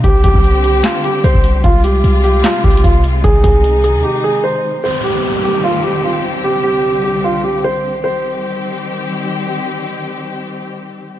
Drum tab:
HH |x-----x-----x-----x-----x-----x-----x-----x-----|x-----x-----x-----x-----x--x--x-x-x-x-----x-----|x-----x-----x-----x-----------------------------|------------------------------------------------|
CP |------------------------x-----------------------|------------------------x-----------------------|------------------------------------------------|------------------------------------------------|
SD |------------------------o-----------------------|------------------------o-----------------------|------------------------------------------------|------------------------------------------------|
BD |o-----o--o-----------------------------o--------|o-----------------------------o-----o-----------|o-----o-----------------------------------------|------------------------------------------------|

HH |------------------------------------------------|------------------------------------------------|------------------------------------------------|
CP |------------------------------------------------|------------------------------------------------|------------------------------------------------|
SD |------------------------------------------------|------------------------------------------------|------------------------------------------------|
BD |------------------------------------------------|------------------------------------------------|------------------------------------------------|